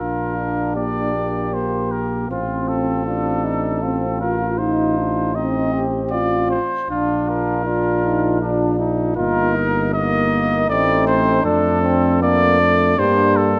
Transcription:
Already playing: A#4
0.00 A#1 D4 F4
0.37 D4
0.75 A#3 G4 D5
1.15 A#3
1.52 A#3 C5
1.92 A#4
2.29 A1 C4 F4
2.68 A4
3.06 D4 F4
3.44 D#4
3.82 C4 F4
4.21 F4 A#4
4.58 D#4 F4 C5
4.97 D4
5.34 C4 D#4 D#5
5.73 G4
6.11 F4 D5
6.51 C5
6.88 A#1 D4 F4
7.29 A#4
7.66 D4 F4
8.05 D#4
8.41 D4 F4
8.79 D#4
9.17 G1 A#3 D#4 F4 A#4
9.55 D#4
9.94 A#3 D#4 D#5
10.69 A1 A3 C4 D#4 D5
11.07 C5
11.43 F2 A3 D4 A4
11.83 C4
12.22 A3 A#3 D4 D5
12.60 A3
12.98 G2 G3 A#3 D4 C5
13.37 A4

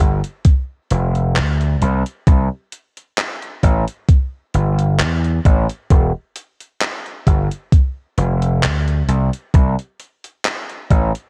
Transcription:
0.00 G1, kick, closed hi-hat
0.24 closed hi-hat
0.45 kick, closed hi-hat
0.91 F1, closed hi-hat
1.15 closed hi-hat
1.36 D2, clap, closed hi-hat
1.61 closed hi-hat
1.82 C2, closed hi-hat
2.06 closed hi-hat
2.27 C2, kick, closed hi-hat
2.72 closed hi-hat
2.97 closed hi-hat
3.18 clap, closed hi-hat
3.42 closed hi-hat
3.63 A1, kick, closed hi-hat
3.88 closed hi-hat
4.09 kick, closed hi-hat
4.54 G1, closed hi-hat
4.79 closed hi-hat
4.99 E2, clap, closed hi-hat
5.24 closed hi-hat
5.45 A1, kick, closed hi-hat
5.69 closed hi-hat
5.90 E1, kick, closed hi-hat
6.36 closed hi-hat
6.60 closed hi-hat
6.81 clap, closed hi-hat
7.06 closed hi-hat
7.27 G1, kick, closed hi-hat
7.51 closed hi-hat
7.72 kick, closed hi-hat
8.18 F1, closed hi-hat
8.42 closed hi-hat
8.63 D2, clap, closed hi-hat
8.88 closed hi-hat
9.08 C2, closed hi-hat
9.33 closed hi-hat
9.54 C2, kick, closed hi-hat
9.79 closed hi-hat
10.00 closed hi-hat
10.24 closed hi-hat
10.45 clap, closed hi-hat
10.69 closed hi-hat
10.90 A1, kick, closed hi-hat
11.15 closed hi-hat

